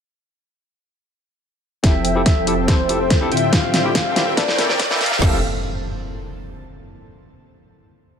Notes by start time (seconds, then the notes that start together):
1.83 F1 F3 C4 E4 G4 A4 C5 E5 G5, kick, snare, closed hi-hat, riser
2.05 closed hi-hat
2.15 C4 E4 G4 A4
2.26 E5, kick, snare, closed hi-hat
2.46 C4 E4 G4 A4, closed hi-hat
2.67 C4 E4 G4 A4 C5, kick, snare, closed hi-hat
2.88 C4 E4 G4 A4, closed hi-hat
3.00 C5
3.10 kick, snare, closed hi-hat
3.20 C4 E4 G4 A4
3.32 D1 D3 C4 F4 G4 E5 G5, closed hi-hat
3.37 closed hi-hat
3.52 C4 E4 F4 G4 F5, kick, snare, closed hi-hat
3.74 snare, closed hi-hat
3.84 C4 E4 F4 G4
3.95 F5, kick, snare, closed hi-hat
4.15 C4 E4 F4 G4, snare, closed hi-hat
4.36 E1 D3 A#3 D4 E4 A4 D5 A5, kick, snare, closed hi-hat
4.48 snare
4.58 A#3 D4 E4 A4, snare, closed hi-hat
4.69 D5, snare
4.80 kick, snare, closed hi-hat
4.90 A#3 D4 E4 A4, snare
5.00 F5, snare, closed hi-hat
5.06 closed hi-hat
5.12 snare
5.19 F1 F3 C4 E4 G4 A4 F5, kick, snare, crash, impact
5.25 A4